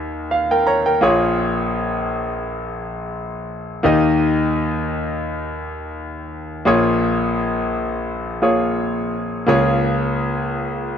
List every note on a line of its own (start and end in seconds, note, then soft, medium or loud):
0.00 0.98 D#2 medium
0.00 0.98 D#3 medium
0.00 0.62 A#3 medium
0.00 0.62 D#4 medium
0.00 0.63 G4 medium
0.00 1.03 C5 soft
0.00 0.27 D#5 medium
0.00 1.03 G#5 medium
0.31 0.49 F5 medium
0.51 0.66 A#4 medium
0.51 0.66 G5 medium
0.67 0.85 C#5 medium
0.67 0.85 A#5 medium
0.86 1.20 A#4 soft
0.86 1.19 G5 medium
1.01 3.80 A#1 medium
1.01 3.80 A#2 medium
1.01 3.80 A#3 medium
1.01 3.80 F4 medium
1.01 3.80 G#4 medium
1.01 3.81 C#5 medium
3.83 6.62 D#2 medium
3.83 6.62 D#3 medium
3.83 6.62 A#3 medium
3.83 6.62 D#4 medium
3.83 6.63 G4 medium
3.83 6.63 D#5 medium
6.65 9.44 A#1 medium
6.65 9.45 A#2 medium
6.65 8.39 A#3 medium
6.65 8.39 F4 medium
6.65 8.39 G#4 medium
6.65 8.40 C#5 medium
8.42 9.45 A#3 medium
8.42 9.46 F4 soft
8.42 9.47 G#4 soft
8.42 9.48 C#5 medium
9.47 10.98 C#2 medium
9.47 10.98 C#3 medium
9.47 10.98 A#3 medium
9.47 10.98 F4 medium
9.47 10.98 G#4 medium
9.47 10.98 C#5 medium